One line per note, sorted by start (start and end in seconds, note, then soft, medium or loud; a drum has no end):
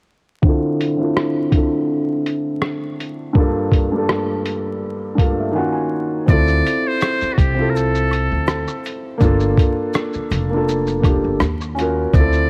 0.41 0.79 D3 loud
0.41 0.80 C4 medium
0.41 0.81 E4 medium
0.41 kick loud
0.46 0.82 F4 medium
0.46 0.83 A4 loud
0.81 closed hi-hat medium
0.96 1.35 D3 medium
0.96 1.36 C4 medium
0.96 1.37 E4 medium
1.01 1.38 F4 medium
1.01 1.38 A4 medium
1.17 cross-stick loud
1.51 2.52 D3 medium
1.51 2.53 C4 medium
1.51 2.54 E4 medium
1.51 kick medium
1.51 closed hi-hat medium
1.56 2.55 F4 medium
1.56 2.55 A4 medium
2.26 closed hi-hat medium
2.62 cross-stick loud
3.00 closed hi-hat medium
3.33 3.72 G2 medium
3.33 3.72 A#3 medium
3.33 3.73 D4 medium
3.33 kick loud
3.38 3.74 F4 medium
3.38 3.75 A4 loud
3.72 kick medium
3.72 closed hi-hat medium
3.92 4.78 G2 medium
3.92 4.78 A#3 medium
3.92 4.79 D4 medium
3.97 4.80 F4 medium
3.97 4.81 A4 medium
4.09 cross-stick loud
4.46 closed hi-hat medium
5.15 5.53 G2 medium
5.15 5.52 A#3 medium
5.15 5.55 D4 medium
5.15 5.37 F5 medium
5.15 kick medium
5.19 5.55 F4 medium
5.19 5.57 A4 medium
5.19 closed hi-hat medium
5.39 5.54 E5 medium
5.52 6.14 D#3 medium
5.52 6.14 A#3 medium
5.52 6.15 C#4 medium
5.52 5.74 F#5 medium
5.57 6.16 F4 medium
5.57 6.17 F#4 medium
5.73 6.23 G#5 medium
6.26 6.60 D2 loud
6.26 7.15 C4 medium
6.26 7.17 E4 medium
6.26 6.89 D5 loud
6.26 kick loud
6.26 shaker medium
6.30 7.17 F4 medium
6.30 7.19 A4 medium
6.47 shaker soft
6.65 closed hi-hat medium
6.65 shaker soft
6.87 7.35 C5 loud
7.01 cross-stick loud
7.01 shaker medium
7.21 muted upright bass stroke soft
7.21 shaker soft
7.33 7.40 F#4 medium
7.38 8.27 C2 medium
7.38 7.71 G4 medium
7.38 kick loud
7.38 closed hi-hat medium
7.38 shaker medium
7.38 shaker soft
7.55 8.55 C4 medium
7.55 8.56 E4 medium
7.59 8.57 F4 medium
7.59 8.58 A4 medium
7.70 7.77 A#4 medium
7.75 8.85 A4 medium
7.75 shaker medium
7.95 shaker medium
8.11 closed hi-hat medium
8.11 high woodblock medium
8.11 shaker soft
8.13 shaker soft
8.32 8.63 D2 medium
8.47 cross-stick loud
8.47 shaker medium
8.48 shaker medium
8.68 high woodblock soft
8.68 shaker medium
8.84 closed hi-hat medium
8.84 shaker soft
8.86 shaker soft
9.18 9.53 G1 loud
9.18 10.08 A#3 loud
9.18 10.09 D4 loud
9.18 kick loud
9.18 shaker medium
9.22 10.10 F4 loud
9.22 10.11 A4 loud
9.40 shaker soft
9.57 kick medium
9.57 closed hi-hat medium
9.57 shaker medium
9.57 shaker soft
9.93 cross-stick loud
9.93 shaker medium
10.13 muted upright bass stroke soft
10.13 shaker soft
10.30 11.20 F1 loud
10.30 closed hi-hat medium
10.30 shaker soft
10.32 shaker medium
10.50 10.88 A#3 medium
10.50 10.89 D4 medium
10.54 10.90 F4 medium
10.54 10.91 A4 loud
10.68 shaker medium
10.87 shaker medium
11.00 11.38 A#3 medium
11.00 11.40 D4 medium
11.00 kick medium
11.04 11.41 F4 medium
11.04 11.42 G4 medium
11.04 closed hi-hat medium
11.04 high woodblock medium
11.04 shaker soft
11.24 11.39 G1 medium
11.40 12.04 D#2 medium
11.40 cross-stick loud
11.40 shaker medium
11.61 high woodblock soft
11.61 shaker soft
11.75 12.02 C#4 medium
11.75 12.03 F4 medium
11.75 closed hi-hat medium
11.75 shaker soft
11.79 12.04 F#4 medium
11.79 12.05 A#4 medium
12.13 12.46 D2 loud
12.13 12.50 C4 medium
12.13 12.50 E4 medium
12.13 12.50 D5 loud
12.13 kick loud
12.13 shaker medium
12.18 12.50 F4 medium
12.18 12.50 A4 medium
12.33 shaker soft